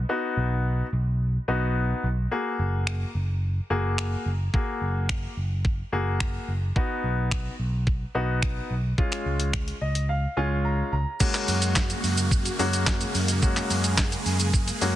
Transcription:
0.09 B3 D#4 F#4
0.37 B1
0.93 B1
1.48 B1 B3 D#4 F#4
2.04 B1
2.31 A#3 F#4 G#4
2.59 F#1
2.87 finger snap
3.15 F#1
3.70 F#1 A#3 F#4 G#4
3.98 finger snap
4.26 F#1
4.53 A#3 F#4 G#4, kick
4.81 F#1
5.09 finger snap, kick
5.37 F#1
5.65 kick
5.92 F#1 A#3 F#4 G#4
6.20 finger snap, kick
6.48 F#1
6.76 B3 D#4 F#4, kick
7.04 B1
7.31 finger snap, kick
7.59 B1
7.87 kick
8.15 B1 B3 D#4 F#4
8.43 finger snap, kick
8.70 B1
8.98 G#3 C#4 F4, kick
9.12 finger snap, closed hi-hat
9.26 C#2
9.40 closed hi-hat
9.53 finger snap, kick
9.68 closed hi-hat
9.81 C#2 D#5
9.95 closed hi-hat
10.09 F5
10.37 C#2 G#3 C#4 F4 G#5
10.65 A#5
10.92 C#2 A#5
11.20 C#3 G#3 A#3 C#4 F#4, kick, crash, shaker
11.34 clap, closed hi-hat, shaker
11.48 F#2, open hi-hat, shaker
11.62 closed hi-hat, shaker
11.76 kick, snare, clap, shaker
11.90 closed hi-hat, shaker
12.04 F#2, open hi-hat, shaker
12.18 closed hi-hat, shaker
12.31 kick, shaker
12.46 closed hi-hat, shaker
12.59 F#2 G#3 A#3 C#4 F#4, open hi-hat, shaker
12.73 closed hi-hat, shaker
12.87 kick, snare, clap, shaker
13.01 closed hi-hat, shaker
13.15 F#2, open hi-hat, shaker
13.28 closed hi-hat, shaker
13.42 G#3 A#3 C#4 F#4 G#4, kick, shaker
13.56 clap, closed hi-hat, shaker
13.70 F#2, open hi-hat, shaker
13.84 closed hi-hat, shaker
13.98 kick, snare, clap, shaker
14.12 closed hi-hat, shaker
14.26 F#2, open hi-hat, shaker
14.40 closed hi-hat, shaker
14.54 kick, shaker
14.68 closed hi-hat, shaker
14.81 F#2 G#3 A#3 C#4 F#4, open hi-hat, shaker

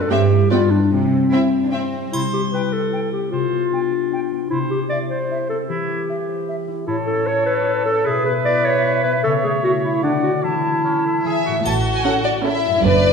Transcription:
Already playing: F#2 A3 D4 A4
0.02 A4
0.10 G2 C4 G4 E5 G5
0.31 E4 G4
0.50 G2 B3 F4 D5 G5
0.71 D4 G4
0.92 C3 C4
1.12 C4
1.32 C4 E4 G4 E5 G5
1.53 C5
1.63 D4
1.73 C4 E4 E5 G5
1.93 G3
2.12 C3 E4 C5, triangle
2.33 C4 G4
2.52 E4 B4 G5
2.73 G4 A4
2.92 E4 G5
3.12 C4 G4
3.31 C3 F4 C5
3.52 B3
3.72 D4 G5
3.92 G4
4.12 D4 G5
4.31 B3
4.50 C3 E4 C5
4.70 G4
4.89 E4 D5 E5
5.10 G4 C5
5.30 E4 E5
5.49 C4 A4
5.68 E3 E4 G4
5.89 E4
6.09 G4 E5
6.29 C5
6.48 G4 E5
6.68 E4
6.87 A2 E4 A4 C#5
7.07 C#4 A4
7.27 E4 C#5
7.46 A4 B4
7.66 E4
7.85 C#4 A4
8.05 B2 G#4 B4 E5
8.25 B3 B4
8.45 E4 D5
8.65 C#5
8.84 E4
9.04 B3 B4
9.23 C#3 A4 C#5
9.43 A3 G#4
9.63 E4 F#4
9.84 E4 C#5
10.02 D3 D4 D5 F#5
10.23 F#4 C#5
10.43 E3 E4 A5
10.64 E4
10.85 C#4 C#5
11.05 E4 A4
11.25 E3 G#4 E5 G#5
11.45 A2 E4 F#4 B4
11.52 A3
11.56 E4
11.61 A2 F#4 C#5
11.65 A1 A5, triangle
11.95 G#5
12.05 C#4 A4 F#5
12.24 D5
12.44 C#4 E4 A4 E5
12.66 F#2
12.71 A3
12.75 D4
12.80 F#2 D5
12.84 F#1 B4 D5

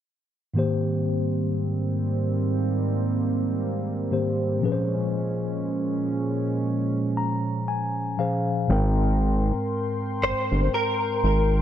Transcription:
0.54 G#2 D#3 G3 A#3 C4 G4
0.59 C5
4.11 G#2 D#3 A#3 G4 C5
4.61 A#2 F3 G#3 C#4 G#4
4.66 B4
4.72 C5
7.17 A#5
7.68 G#5
8.18 A#2 F3 C#4 G#4 C5 F5
8.67 G#1 G#2 G#3 C4 A#4 G5 C6
8.72 A#4
10.22 G1 C5
10.52 G1
10.74 A#4
11.24 G#1

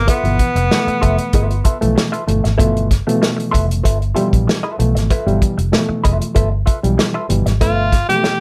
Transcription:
0.07 B3 F4 A4 B4 E5, kick, closed hi-hat
0.24 G1 B2 E3 F3 B3, closed hi-hat
0.39 kick, closed hi-hat
0.55 F1, muted hollow-body jazz guitar stroke, closed hi-hat
0.70 B2 E3 F3 G#3, muted hollow-body jazz guitar stroke, snare
0.77 A3
0.87 muted fingered electric bass stroke, muted hollow-body jazz guitar stroke, closed hi-hat
1.01 F1 F4 A4 B4 E5, kick, closed hi-hat
1.18 closed hi-hat
1.33 G1 F4 A4 B4 E5, kick, closed hi-hat
1.50 muted hollow-body jazz guitar stroke, closed hi-hat
1.64 F4 A4 B4 E5, kick, closed hi-hat
1.81 B1 B2 E3 F3 A3, muted hollow-body jazz guitar stroke, closed hi-hat
1.95 muted hollow-body jazz guitar stroke, snare
2.12 F4 A4 B4 E5, closed hi-hat
2.26 G1 B2 E3 F3 A3, muted hollow-body jazz guitar stroke, closed hi-hat
2.44 G#1, muted hollow-body jazz guitar stroke, snare, closed hi-hat
2.58 G1 B2 E3 F3 A3 F4 A4 B4 E5, kick, closed hi-hat
2.77 closed hi-hat
2.91 kick, snare, closed hi-hat
3.07 B2 E3 F3 A3, muted hollow-body jazz guitar stroke, closed hi-hat
3.22 muted hollow-body jazz guitar stroke, snare
3.37 muted hollow-body jazz guitar stroke, closed hi-hat
3.51 F1 F4 A4 B4 E5, kick, closed hi-hat
3.69 muted hollow-body jazz guitar stroke, closed hi-hat
3.84 G1 F4 A4 B4 E5, kick, closed hi-hat
4.01 muted hollow-body jazz guitar stroke, closed hi-hat
4.14 B2 E3 F3 G3 F4 A4 B4 E5, closed hi-hat
4.33 A#1, muted hollow-body jazz guitar stroke, kick, closed hi-hat
4.47 muted hollow-body jazz guitar stroke, snare
4.63 F4 A4 B4 E5
4.78 B1 B2 E3 F3 A3, muted hollow-body jazz guitar stroke, closed hi-hat
4.95 G#1, muted hollow-body jazz guitar stroke, snare, closed hi-hat
5.10 F4 A4 B4 E5, kick, closed hi-hat
5.26 G1 B2 E3 F3 G3, closed hi-hat
5.42 kick, closed hi-hat
5.58 F1, muted hollow-body jazz guitar stroke, closed hi-hat
5.72 B2 E3 F3 A3, muted hollow-body jazz guitar stroke, snare
5.89 muted hollow-body jazz guitar stroke, muted fingered electric bass stroke
6.04 F1 F4 A4 B4 E5, kick, closed hi-hat
6.20 muted hollow-body jazz guitar stroke, closed hi-hat
6.35 G1 F4 A4 B4 E5, kick, closed hi-hat
6.51 muted hollow-body jazz guitar stroke
6.66 F4 A4 B4 E5, kick, closed hi-hat
6.83 B1 B2 E3 F3 G3, muted hollow-body jazz guitar stroke, closed hi-hat
6.98 muted hollow-body jazz guitar stroke, snare
7.14 F4 A4 B4 E5
7.29 G1 B2 E3 F3 G3, muted hollow-body jazz guitar stroke, closed hi-hat
7.46 G#1, muted hollow-body jazz guitar stroke, snare, closed hi-hat
7.61 G1 B2 D3 F3 A3 F4 A4 B4 E5, kick, closed hi-hat
7.92 kick, snare, closed hi-hat
8.09 B2 E3 F3 G#3 G4, muted hollow-body jazz guitar stroke, closed hi-hat
8.16 A3
8.23 muted hollow-body jazz guitar stroke, snare

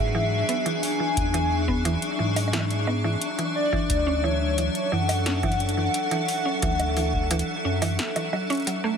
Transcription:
Already playing: G#2 F#3 D4 F#4 G#4 B4 E5 C#6
0.15 E3
0.49 B3, closed hi-hat
0.66 E3, closed hi-hat
0.83 G#5, open hi-hat
1.00 E3
1.17 E2, kick, closed hi-hat
1.34 E3, closed hi-hat
1.68 B3, kick
1.85 E3, closed hi-hat
2.02 closed hi-hat
2.19 G#2 E3
2.36 open hi-hat, high bongo
2.48 high bongo
2.53 E3, snare, closed hi-hat
2.59 high bongo
2.70 closed hi-hat
2.87 B3, high bongo
3.04 E3
3.22 closed hi-hat
3.38 E3, closed hi-hat
3.55 D5
3.73 E3, kick
3.90 D2, kick, closed hi-hat
4.07 C#4
4.24 E3 A4 C#5
4.58 E3, closed hi-hat
4.75 closed hi-hat
4.92 F#2 E3 F#5
5.09 open hi-hat, high bongo
5.26 C#4, snare, closed hi-hat
5.43 E3, kick, closed hi-hat
5.52 closed hi-hat
5.60 closed hi-hat
5.69 closed hi-hat
5.77 E3
5.94 closed hi-hat
6.11 E3, closed hi-hat
6.28 open hi-hat
6.45 C#4
6.62 D2 E3, kick, closed hi-hat
6.80 closed hi-hat, high bongo
6.97 E3, open hi-hat
7.14 kick
7.31 E3, closed hi-hat
7.39 closed hi-hat
7.65 F#2 C#4
7.82 E3, open hi-hat, high bongo
7.99 snare, closed hi-hat
8.16 E3, closed hi-hat, high bongo
8.33 F#3, high bongo
8.50 C#4, closed hi-hat
8.53 closed hi-hat
8.55 closed hi-hat
8.57 closed hi-hat
8.60 closed hi-hat
8.62 closed hi-hat
8.65 F#3, closed hi-hat
8.67 closed hi-hat
8.84 A3

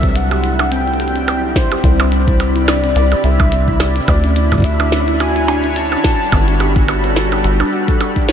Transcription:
Already playing: C2 C3 F#3 C4 D4 A4 E5 B5
0.03 C4, kick, closed hi-hat
0.09 E4
0.16 E4 F#5, closed hi-hat
0.31 G4, closed hi-hat, percussion blips
0.44 E4, closed hi-hat
0.59 D4, closed hi-hat, percussion blips
0.72 C4 D5 G5, closed hi-hat
0.87 E4, closed hi-hat
0.94 closed hi-hat
1.00 G4, closed hi-hat
1.08 closed hi-hat
1.15 E4, closed hi-hat
1.28 D4, closed hi-hat, percussion blips
1.44 C4
1.56 E4 C5, kick, snare, closed hi-hat
1.72 G4, closed hi-hat, percussion blips
1.84 C2 E4, kick, closed hi-hat
2.00 D4, closed hi-hat, percussion blips
2.12 C4, closed hi-hat
2.28 E4, kick, closed hi-hat
2.40 G4, closed hi-hat, percussion blips
2.56 E4, closed hi-hat
2.68 D4 D5, snare, closed hi-hat, percussion blips
2.84 C4, closed hi-hat
2.96 C2 E4, closed hi-hat
3.12 G4, closed hi-hat, percussion blips
3.24 C2 E4 E5, closed hi-hat
3.40 D4, kick, closed hi-hat, percussion blips
3.52 C4, closed hi-hat
3.68 E4, kick
3.80 G4 D5, snare, closed hi-hat, percussion blips
3.96 E4, closed hi-hat
4.08 D2 D3 D4, kick, closed hi-hat, percussion blips
4.14 D4
4.24 C#4, closed hi-hat
4.36 E4 F#4, closed hi-hat
4.52 F#4, kick, closed hi-hat, percussion blips
4.54 kick
4.58 kick
4.60 kick
4.62 E4 E5, kick, closed hi-hat
4.80 D4, closed hi-hat, percussion blips
4.92 C#4, snare
4.97 C#5
5.08 E4, closed hi-hat
5.20 F#4 G#5, closed hi-hat, percussion blips
5.36 E4, closed hi-hat
5.48 D4, closed hi-hat, percussion blips
5.64 C#4, closed hi-hat
5.76 E4 A5, closed hi-hat
5.92 F#4, percussion blips
6.04 G3 F#4 A5, kick, snare
6.20 D4
6.32 G1 B3, kick, closed hi-hat, percussion blips
6.42 A4
6.48 F#4, closed hi-hat
6.60 G4, closed hi-hat, percussion blips
6.76 F#4, kick, closed hi-hat
6.88 D4, closed hi-hat, percussion blips
7.04 B3, closed hi-hat
7.09 G4
7.16 F#4, snare, closed hi-hat
7.32 G4, closed hi-hat, percussion blips
7.44 G1 F#4, closed hi-hat
7.60 D4, closed hi-hat, percussion blips
7.73 F#4
7.88 A4, kick, closed hi-hat
8.01 D4, closed hi-hat, percussion blips
8.16 D4, kick, closed hi-hat
8.29 G4 C#5, snare, closed hi-hat

